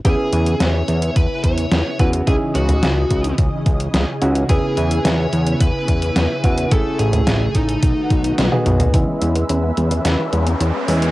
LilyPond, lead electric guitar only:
\new Staff \with { instrumentName = "Lead electric guitar" } { \time 4/4 \key e \major \tempo 4 = 108 gis'4 cis''4 b'8 cis''4 b'8 | gis'8 fis'4. r2 | gis'4 cis''4 b'2 | a'8 gis'4 dis'4. r4 |
r1 | }